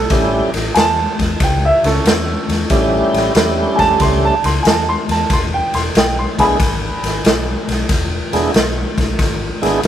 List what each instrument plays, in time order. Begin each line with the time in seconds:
Already playing: upright piano A4
0.10 fingered electric bass A1, tonewheel organ G3 A3 C#4 E4 G4, kick, snare, ride
0.54 fingered electric bass A1, snare, ride
0.74 fingered electric bass E2, upright piano G#5 A5, snare, ride
1.19 fingered electric bass E2, kick, snare, ride
1.40 fingered electric bass C#2, upright piano G5, kick, snare, ride
1.65 upright piano E5
1.83 fingered electric bass C#2, upright piano C#4 A4, snare, ride
2.05 fingered electric bass E2, snare, ride
2.48 fingered electric bass E2, snare, ride
2.70 fingered electric bass A1, tonewheel organ G3 A3 C#4 E4 G4, kick, snare, ride
3.14 fingered electric bass A1, snare, ride
3.35 fingered electric bass E2, tonewheel organ G3 A3 C#4 E4 G4, snare, ride
3.75 fingered electric bass E2, upright piano G#5 A5, kick, ride
3.81 snare
4.00 fingered electric bass C#2, upright piano C6, kick, snare, ride
4.25 upright piano A5
4.44 fingered electric bass C#2, upright piano C6, snare, ride
4.63 fingered electric bass E2, upright piano G#5, ride
4.67 upright piano A5, snare
4.89 upright piano C6
5.08 fingered electric bass E2, upright piano A5, snare, ride
5.30 fingered electric bass E1, upright piano C6, kick, snare, ride
5.54 upright piano G5
5.74 fingered electric bass E1, upright piano C6, snare, ride
5.95 fingered electric bass B1, upright piano G5, snare, ride
6.19 upright piano C6
6.38 fingered electric bass B1, tonewheel organ G#3 B3 D4 E4 G#4, upright piano G#5 B5, kick, snare, ride
6.60 fingered electric bass G#1, kick, snare, ride
7.03 fingered electric bass G#1, snare, ride
7.24 fingered electric bass B1, snare, ride
7.68 fingered electric bass B1, snare, ride
7.89 fingered electric bass E1, kick, snare, ride
8.33 fingered electric bass E1, tonewheel organ G#3 B3 D4 E4 G#4, snare, ride
8.54 fingered electric bass B1, snare, ride
8.98 fingered electric bass B1, kick, snare, ride
9.19 fingered electric bass G#1, kick, snare, ride
9.62 fingered electric bass G#1, tonewheel organ G#3 B3 D4 E4 G#4, snare, ride
9.83 fingered electric bass B1, ride